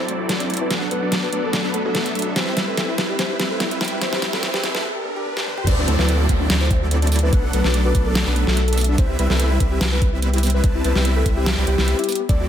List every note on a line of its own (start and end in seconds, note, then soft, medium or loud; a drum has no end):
0.00 0.68 F#3 medium
0.00 0.68 C4 medium
0.00 0.68 E4 medium
0.00 0.68 A4 medium
0.00 0.18 C5 medium
0.00 0.68 D5 loud
0.00 riser medium
0.08 0.17 A3 medium
0.08 closed hi-hat medium
0.20 0.27 F#4 medium
0.29 0.38 A3 medium
0.29 snare medium
0.29 closed hi-hat medium
0.40 0.43 D4 loud
0.40 closed hi-hat medium
0.50 0.56 A3 medium
0.50 closed hi-hat soft
0.54 closed hi-hat medium
0.57 closed hi-hat medium
0.61 0.69 E4 loud
0.61 0.80 B4 loud
0.70 0.89 F#3 medium
0.70 0.80 A3 medium
0.70 0.89 B3 medium
0.70 0.89 D4 medium
0.70 0.89 A4 medium
0.70 0.89 F#5 loud
0.70 snare medium
0.70 closed hi-hat medium
0.82 0.89 A4 medium
0.91 1.01 F#3 medium
0.91 1.00 A3 medium
0.91 1.01 B3 medium
0.91 1.01 D4 medium
0.91 1.01 A4 medium
0.91 1.11 B4 loud
0.91 1.01 F#5 medium
0.91 closed hi-hat medium
1.02 1.30 F#3 medium
1.02 1.30 B3 medium
1.02 1.05 D4 loud
1.02 1.30 D4 medium
1.02 1.30 A4 medium
1.02 1.30 D5 loud
1.12 1.18 A3 medium
1.12 snare medium
1.12 closed hi-hat medium
1.23 1.31 F#4 loud
1.23 1.45 B4 medium
1.33 1.62 F#3 loud
1.33 1.42 A3 medium
1.33 1.62 B3 medium
1.33 1.62 D4 medium
1.33 1.62 A4 medium
1.33 1.62 D5 loud
1.33 closed hi-hat medium
1.44 1.63 A4 loud
1.44 1.52 A4 medium
1.53 1.62 A3 medium
1.53 snare medium
1.53 closed hi-hat medium
1.64 1.82 F#3 medium
1.64 1.82 B3 medium
1.64 1.82 D4 medium
1.64 1.68 D4 loud
1.64 1.82 A4 medium
1.64 1.82 B4 loud
1.74 1.80 A3 medium
1.74 2.28 A4 loud
1.74 closed hi-hat medium
1.85 2.34 F#3 medium
1.85 2.34 B3 medium
1.85 2.34 D4 medium
1.85 1.93 F#4 loud
1.85 2.34 A4 medium
1.85 2.34 E5 medium
1.95 2.04 A3 medium
1.95 snare medium
1.95 closed hi-hat medium
2.06 2.14 A4 medium
2.06 closed hi-hat medium
2.15 2.24 A3 medium
2.15 closed hi-hat soft
2.19 closed hi-hat medium
2.22 closed hi-hat medium
2.27 2.30 D4 loud
2.36 2.54 G3 medium
2.36 2.42 B3 medium
2.36 2.54 C4 medium
2.36 2.54 E4 medium
2.36 2.54 B4 medium
2.36 2.56 C5 medium
2.36 2.54 E5 medium
2.36 snare medium
2.36 closed hi-hat medium
2.47 2.55 G4 medium
2.57 2.65 G3 medium
2.57 2.66 B3 medium
2.57 2.65 C4 medium
2.57 2.65 E4 medium
2.57 2.65 B4 medium
2.57 2.65 E5 medium
2.57 snare medium
2.57 closed hi-hat medium
2.68 2.96 G3 medium
2.68 2.96 C4 medium
2.68 2.96 E4 medium
2.68 2.87 A4 medium
2.68 2.96 B4 medium
2.68 2.76 B4 medium
2.68 2.96 E5 loud
2.77 2.86 B3 medium
2.77 snare medium
2.77 closed hi-hat medium
2.88 2.92 E4 loud
2.98 3.17 G3 medium
2.98 3.04 B3 medium
2.98 3.17 C4 medium
2.98 3.17 E4 medium
2.98 3.17 B4 medium
2.98 3.17 E5 medium
2.98 snare medium
2.98 closed hi-hat medium
3.09 3.17 G4 medium
3.19 3.37 G3 medium
3.19 3.25 B3 medium
3.19 3.37 C4 medium
3.19 3.37 E4 medium
3.19 3.37 B4 medium
3.19 3.38 C5 loud
3.19 3.37 E5 medium
3.19 snare medium
3.19 closed hi-hat medium
3.30 3.38 G4 medium
3.39 3.48 G3 medium
3.39 3.49 B3 medium
3.39 3.48 C4 medium
3.39 3.48 E4 medium
3.39 3.48 B4 medium
3.39 3.48 E5 medium
3.39 snare medium
3.39 closed hi-hat medium
3.50 3.79 G3 medium
3.50 3.79 C4 medium
3.50 3.79 E4 medium
3.50 3.70 A4 medium
3.50 3.79 B4 medium
3.50 3.58 B4 medium
3.50 3.79 E5 loud
3.60 3.69 B3 medium
3.60 snare medium
3.60 closed hi-hat medium
3.71 3.74 E4 medium
3.71 closed hi-hat medium
3.81 3.99 G3 medium
3.81 3.87 B3 medium
3.81 3.99 C4 medium
3.81 3.99 E4 medium
3.81 3.99 B4 medium
3.81 3.99 E5 medium
3.81 snare medium
3.81 closed hi-hat soft
3.85 closed hi-hat medium
3.88 4.00 G4 loud
3.88 closed hi-hat medium
4.01 4.20 G3 medium
4.01 4.07 B3 medium
4.01 4.20 C4 medium
4.01 4.20 E4 medium
4.01 4.20 B4 medium
4.01 4.21 C5 loud
4.01 4.20 E5 medium
4.01 snare medium
4.01 closed hi-hat medium
4.12 4.20 G4 loud
4.12 snare medium
4.22 4.31 G3 medium
4.22 4.31 B3 medium
4.22 4.31 C4 medium
4.22 4.31 E4 medium
4.22 4.31 B4 medium
4.22 4.31 E5 loud
4.22 snare medium
4.22 closed hi-hat medium
4.33 4.41 G3 medium
4.33 4.41 C4 medium
4.33 4.41 E4 medium
4.33 4.41 A4 medium
4.33 4.41 B4 medium
4.33 4.41 E5 loud
4.33 snare medium
4.43 4.61 G3 medium
4.43 4.49 B3 medium
4.43 4.61 C4 medium
4.43 4.61 E4 medium
4.43 4.61 B4 medium
4.43 4.62 C5 loud
4.43 4.61 E5 medium
4.43 snare loud
4.43 closed hi-hat medium
4.54 4.62 G4 loud
4.54 snare medium
4.63 4.72 G3 medium
4.63 4.73 B3 medium
4.63 4.72 C4 medium
4.63 4.72 E4 medium
4.63 4.72 B4 medium
4.63 4.72 E5 loud
4.63 snare loud
4.63 closed hi-hat medium
4.74 4.83 G3 medium
4.74 4.83 C4 medium
4.74 4.83 E4 medium
4.74 4.83 A4 loud
4.74 4.82 B4 medium
4.74 4.83 B4 medium
4.74 4.83 E5 loud
4.74 snare medium
4.84 4.90 B3 medium
4.84 swell medium
4.95 5.03 G4 loud
5.05 5.11 B3 medium
5.16 5.24 G4 loud
5.26 5.32 B3 medium
5.37 5.45 G4 loud
5.37 snare medium
5.46 5.52 B3 medium
5.46 mid tom medium
5.58 5.65 G4 loud
5.58 mid tom medium
5.67 5.86 D2 loud
5.67 5.85 F#3 medium
5.67 5.76 A3 medium
5.67 5.85 C4 medium
5.67 5.85 E4 medium
5.67 5.85 A4 medium
5.67 5.85 D5 medium
5.67 5.87 D5 loud
5.67 kick loud
5.67 closed hi-hat medium
5.67 crash loud
5.67 downlifter medium
5.78 5.81 D4 loud
5.88 5.97 D2 loud
5.88 5.96 F#3 medium
5.88 5.94 A3 medium
5.88 5.96 C4 medium
5.88 5.96 E4 medium
5.88 5.96 A4 medium
5.88 5.96 D5 loud
5.88 closed hi-hat medium
5.99 6.27 D2 loud
5.99 6.27 F#3 loud
5.99 6.27 C4 medium
5.99 6.27 E4 medium
5.99 6.07 E4 loud
5.99 6.27 A4 medium
5.99 6.18 B4 loud
5.99 6.27 D5 loud
5.99 snare soft
6.08 6.18 A3 medium
6.08 closed hi-hat medium
6.20 6.27 F#4 medium
6.29 6.48 D2 medium
6.29 6.48 F#3 medium
6.29 6.38 A3 medium
6.29 6.48 C4 medium
6.29 6.48 E4 medium
6.29 6.48 A4 medium
6.29 6.48 D5 medium
6.29 kick medium
6.29 closed hi-hat medium
6.40 6.43 D4 loud
6.50 7.31 D2 loud
6.50 7.30 F#3 medium
6.50 6.56 A3 medium
6.50 7.30 C4 medium
6.50 7.30 E4 medium
6.50 7.30 A4 medium
6.50 7.30 D5 loud
6.50 snare loud
6.50 closed hi-hat medium
6.61 6.69 E4 loud
6.61 6.80 C5 medium
6.70 6.80 A3 medium
6.70 kick loud
6.70 closed hi-hat medium
6.82 6.89 F#4 medium
6.91 7.00 A3 medium
6.91 closed hi-hat medium
7.02 7.05 D4 loud
7.02 closed hi-hat medium
7.07 closed hi-hat medium
7.12 7.18 A3 medium
7.12 closed hi-hat medium
7.12 open hi-hat loud
7.19 closed hi-hat medium
7.23 7.31 E4 loud
7.23 7.42 B4 medium
7.32 7.51 B1 loud
7.32 7.51 F#3 medium
7.32 7.42 A3 medium
7.32 7.51 B3 medium
7.32 7.51 D4 medium
7.32 7.51 A4 medium
7.32 7.51 F#5 loud
7.32 kick loud
7.32 closed hi-hat medium
7.44 7.51 A4 medium
7.53 7.62 B1 loud
7.53 7.63 F#3 medium
7.53 7.62 A3 medium
7.53 7.63 B3 medium
7.53 7.63 D4 medium
7.53 7.63 A4 medium
7.53 7.73 B4 loud
7.53 7.63 F#5 medium
7.53 closed hi-hat medium
7.64 7.93 B1 loud
7.64 7.92 F#3 medium
7.64 7.92 B3 medium
7.64 7.68 D4 loud
7.64 7.92 D4 medium
7.64 7.92 A4 medium
7.64 7.92 D5 loud
7.64 snare soft
7.74 7.80 A3 medium
7.74 closed hi-hat medium
7.85 7.93 F#4 loud
7.85 8.07 B4 medium
7.95 8.24 B1 medium
7.95 8.24 F#3 medium
7.95 8.04 A3 medium
7.95 8.24 B3 medium
7.95 8.24 D4 medium
7.95 8.24 A4 medium
7.95 8.24 D5 loud
7.95 kick medium
7.95 closed hi-hat medium
8.06 8.25 A4 loud
8.06 8.14 A4 medium
8.15 8.24 A3 medium
8.15 snare loud
8.15 closed hi-hat medium
8.26 8.45 B1 loud
8.26 8.45 F#3 loud
8.26 8.45 B3 medium
8.26 8.30 D4 loud
8.26 8.45 D4 medium
8.26 8.45 A4 medium
8.26 8.45 B4 loud
8.36 8.42 A3 medium
8.36 8.90 A4 loud
8.36 closed hi-hat medium
8.47 8.96 B1 loud
8.47 8.96 F#3 medium
8.47 8.96 B3 medium
8.47 8.96 D4 medium
8.47 8.55 F#4 loud
8.47 8.96 A4 medium
8.47 8.96 E5 medium
8.47 snare soft
8.57 8.66 A3 medium
8.57 closed hi-hat medium
8.68 8.76 A4 medium
8.68 closed hi-hat medium
8.73 closed hi-hat medium
8.77 8.87 A3 medium
8.77 closed hi-hat medium
8.77 open hi-hat medium
8.84 closed hi-hat medium
8.89 8.92 D4 loud
8.98 9.17 C2 loud
8.98 9.17 G3 medium
8.98 9.04 B3 medium
8.98 9.17 C4 medium
8.98 9.17 E4 medium
8.98 9.17 B4 medium
8.98 9.18 C5 loud
8.98 9.17 E5 medium
8.98 kick loud
8.98 closed hi-hat medium
9.09 9.17 G4 loud
9.19 9.28 C2 loud
9.19 9.27 G3 medium
9.19 9.28 B3 medium
9.19 9.27 C4 medium
9.19 9.27 E4 medium
9.19 9.27 B4 medium
9.19 9.27 E5 loud
9.19 closed hi-hat medium
9.30 9.58 C2 loud
9.30 9.58 G3 loud
9.30 9.58 C4 medium
9.30 9.58 E4 medium
9.30 9.49 A4 loud
9.30 9.38 B4 medium
9.30 9.58 B4 medium
9.30 9.58 E5 loud
9.30 snare soft
9.40 9.49 B3 medium
9.40 closed hi-hat medium
9.51 9.54 E4 loud
9.60 9.79 C2 medium
9.60 9.79 G3 medium
9.60 9.66 B3 medium
9.60 9.79 C4 medium
9.60 9.79 E4 medium
9.60 9.79 B4 medium
9.60 9.79 E5 medium
9.60 kick medium
9.60 closed hi-hat medium
9.71 9.79 G4 loud
9.81 10.62 C2 loud
9.81 10.61 G3 medium
9.81 9.90 B3 medium
9.81 10.61 C4 medium
9.81 10.61 E4 medium
9.81 10.61 B4 medium
9.81 10.61 E5 loud
9.81 snare loud
9.81 closed hi-hat medium
9.92 10.11 B4 loud
9.92 10.00 B4 medium
10.02 10.11 B3 medium
10.02 kick loud
10.02 closed hi-hat medium
10.13 10.16 E4 loud
10.22 10.28 B3 medium
10.22 closed hi-hat medium
10.33 10.41 G4 loud
10.33 closed hi-hat medium
10.38 closed hi-hat medium
10.43 10.52 B3 medium
10.43 closed hi-hat medium
10.43 open hi-hat medium
10.50 closed hi-hat medium
10.54 10.73 B4 medium
10.54 10.62 B4 medium
10.64 10.82 C2 loud
10.64 10.82 G3 medium
10.64 10.73 B3 medium
10.64 10.82 C4 medium
10.64 10.82 E4 medium
10.64 10.82 B4 medium
10.64 10.82 A5 loud
10.64 kick loud
10.64 closed hi-hat medium
10.75 10.78 E4 loud
10.84 10.93 C2 loud
10.84 10.94 G3 medium
10.84 10.90 B3 medium
10.84 10.94 C4 medium
10.84 10.94 E4 medium
10.84 11.04 B4 loud
10.84 10.94 B4 medium
10.84 10.94 A5 medium
10.84 closed hi-hat medium
10.95 11.24 C2 loud
10.95 11.24 G3 medium
10.95 11.24 C4 medium
10.95 11.24 E4 medium
10.95 11.03 G4 loud
10.95 11.24 B4 medium
10.95 11.23 E5 loud
10.95 snare soft
11.05 11.14 B3 medium
11.05 closed hi-hat medium
11.16 11.29 A4 medium
11.16 11.24 B4 medium
11.26 11.55 C2 loud
11.26 11.55 G3 medium
11.26 11.35 B3 medium
11.26 11.55 C4 medium
11.26 11.55 E4 medium
11.26 11.55 B4 medium
11.26 11.55 E5 loud
11.26 kick medium
11.26 closed hi-hat medium
11.37 11.40 E4 loud
11.37 11.56 G4 loud
11.46 11.53 B3 medium
11.46 snare loud
11.46 closed hi-hat medium
11.58 11.65 C2 loud
11.58 11.65 G3 medium
11.58 11.65 C4 medium
11.58 11.65 E4 medium
11.58 11.65 G4 loud
11.58 11.65 B4 medium
11.58 11.65 D5 loud
11.67 11.76 C2 loud
11.67 11.76 G3 medium
11.67 11.76 B3 medium
11.67 11.76 C4 medium
11.67 11.76 E4 medium
11.67 12.22 G4 loud
11.67 11.76 B4 medium
11.67 11.76 G5 medium
11.67 closed hi-hat medium
11.78 11.94 C2 loud
11.78 11.97 G3 medium
11.78 11.86 B3 loud
11.78 11.97 C4 medium
11.78 11.97 E4 medium
11.78 11.97 B4 medium
11.78 11.97 E5 loud
11.78 snare soft
11.88 11.94 B3 medium
11.88 closed hi-hat medium
11.99 12.04 E4 loud
11.99 closed hi-hat soft
12.04 closed hi-hat medium
12.09 12.15 B3 medium
12.09 closed hi-hat medium
12.09 open hi-hat medium
12.15 closed hi-hat medium
12.20 12.25 B3 medium
12.29 12.48 D2 loud
12.29 12.48 F#3 medium
12.29 12.38 A3 medium
12.29 12.48 C4 medium
12.29 12.48 E4 medium
12.29 12.48 A4 medium
12.29 12.48 D5 loud
12.29 12.48 D5 medium
12.29 kick loud
12.29 closed hi-hat medium
12.40 12.48 F#4 medium